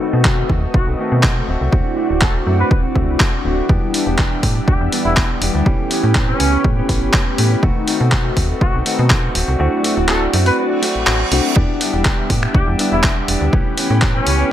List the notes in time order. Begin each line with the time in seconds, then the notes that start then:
Already playing: A3 C4 D#4 F#4 A4 B4 D#5
0.00 D#3 A3 C4 F#4
0.12 B2 A3 C4 F#4
0.24 D#3 A3 C4 F#4, kick, clap
0.49 D#2 D#3 A3 C4 F#4, kick
0.62 A3 C4 F#4
0.74 A1 F#4, kick
0.86 B1 A3 C4 F#4
0.98 D#3 A3 C4 D#4 F#4 B4
1.12 B2
1.23 D#3 A3 C4 F#4, kick, clap
1.35 A3 C4 F#4
1.47 D1 A3 C4 F#4 D5
1.61 C2
1.72 D2 A3 C4 D4 E4 F#4, kick
1.96 A3 C4 F#4
2.09 D1 C4 F#4
2.21 A3 C4 F#4 A4, kick, clap
2.46 F#2 A3 C4 F#4
2.58 C4 F#4 B4
2.71 D1 B4, kick
2.83 C4 F#4
2.95 D2 A3 C4 D4 F#4, kick
3.08 C2
3.20 A3 C4 F#4, kick, clap
3.32 C4 F#4
3.44 D1 A3 C4 F#4
3.68 E2 E3 G3 B3 D4 G4 E5 F#5, kick
3.93 E3 B3 D4 G4, open hi-hat
4.06 E1 B3 D4 G4
4.18 E3 D4 G4, kick, clap
4.43 A2 E3 B3 D4 G4, kick, open hi-hat
4.55 B3 D4 G4
4.68 D2 G4, kick
4.80 E2 B3 D4 G4
4.91 E3 G3 B3 D4 E4 G4 F#5, open hi-hat
5.05 E1 E4
5.16 E3 D4 E4 G4, kick, clap
5.29 B3 D4 G4
5.41 E1 E3 B3 D4 G4, open hi-hat
5.54 D2 B3 D4 G4
5.65 A1 E3 A3 B3 C#4 G4 B4 G5, kick
5.90 E3 B3 C#4 G4, open hi-hat
6.03 A2 B3 C#4 G4
6.14 E3 B3 C#4 G4, kick, clap
6.28 C#4
6.39 C#2 E3 B3 C#4 G4, open hi-hat
6.52 B3 C#4 G4
6.64 A2, kick
6.77 B3 C#4 G4
6.88 A1 E3 A3 B3 C#4 E4 G4, kick, open hi-hat
7.02 G1
7.13 E3 B3 C#4 G4, kick, clap
7.25 B3 C#4 G4
7.37 A2 E3 B3 C#4 G4, open hi-hat
7.50 B3 C#4 G4
7.62 B1 D#3 A3 C4 D#4 F#4 A4 D#5, kick
7.87 D#3 A3 C4 F#4, open hi-hat
7.99 B2 A3 C4 F#4
8.11 D#3 A3 C4 F#4, kick, clap
8.36 D#2 D#3 A3 C4 F#4, kick, open hi-hat
8.49 A3 C4 F#4
8.61 A1 F#4, kick
8.73 B1 A3 C4 F#4
8.85 D#3 A3 C4 D#4 F#4 B4, open hi-hat
8.99 B2
9.10 D#3 A3 C4 F#4, kick, clap
9.22 A3 C4 F#4
9.34 D1 A3 C4 F#4 D5, open hi-hat
9.48 C2
9.59 D2 A3 C4 D4 E4 F#4
9.83 A3 C4 F#4, open hi-hat
9.96 D1 C4 F#4
10.08 A3 C4 F#4 A4, clap
10.33 F#2 A3 C4 F#4, open hi-hat
10.45 C4 F#4 B4, open hi-hat
10.58 B4, reverse cymbal
10.70 C4 F#4
10.82 A3 C4 F#4, open hi-hat
10.95 A1
11.07 A1 A3 C4 F#4, clap
11.19 C4 F#4
11.31 C2 A3 C4 D4 E4 F#4, open hi-hat
11.56 E2 G3 B3 D4 G4 E5 F#5, kick
11.80 B3 D4 G4, open hi-hat
11.93 E1 D4 G4
12.05 B3 D4 G4, kick, clap
12.29 A2 B3 D4 G4, kick, open hi-hat
12.42 D4 G4, finger snap
12.54 D2 G4, kick
12.66 E2 D4 G4
12.78 G3 B3 D4 E4 G4 F#5, open hi-hat
12.92 E1 E4
13.03 B3 D4 E4 G4, kick, clap
13.16 D4 G4
13.27 E1 B3 D4 G4, open hi-hat
13.41 D2
13.52 A1 E3 A3 B3 C#4 E4 G4 B4 G5, kick
13.77 E3 B3 C#4 G4, open hi-hat
13.89 A2 B3 C#4 G4
14.01 E3 B3 C#4 G4, kick, clap
14.15 C#4
14.26 C#2 E3 B3 C#4 G4, open hi-hat
14.39 B3 C#4 G4